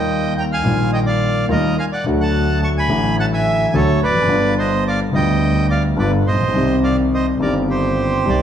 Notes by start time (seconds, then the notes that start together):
Already playing: D#2 D#3 G3 A#3 F4 D#5 G5
0.38 G5 A#5
0.52 F5 G#5
0.62 A#1 A#2 D#3 G3 A#3
0.67 F4
0.93 D#5 G5
1.06 D5 F5
1.48 D#2 D#3 G3 A#3 F4 A#4
1.52 D#5
1.79 F5 G#5
1.92 D5 F#5
2.04 D2 D3 F#3 A3
2.09 F#4
2.21 F#5 A5
2.62 A5 C#6
2.78 G#5 B5
2.88 A1 A2 D3 F#3 A3 F#4
3.20 F#5 A5
3.33 E5 G#5
3.73 D2 D3 F#3 A3 F#4 A4 C#5
4.01 F1 B4 D5
4.08 E2
4.14 F2
4.21 F#2
4.27 G1 G2 D3 G3 B3 F4
4.59 C5 D#5
4.87 D5 F5
5.13 D2 D3 G3 B3 F4 D#5 G5
5.70 D5 F5
5.97 G1 G2 D3 G3 B3 F4 B4 D5
6.27 A#1 C5 D#5
6.33 A1
6.40 A#1
6.47 B1
6.52 C2 C3 D#3 G3 C4
6.56 G4
6.83 D5 F5
7.14 C5 D#5
7.38 G1 G2 D#3 G3 C4
7.42 G4 A#4 D5
7.70 G4 C5
8.25 C2 C3 D#3 G3 C4 G4 D5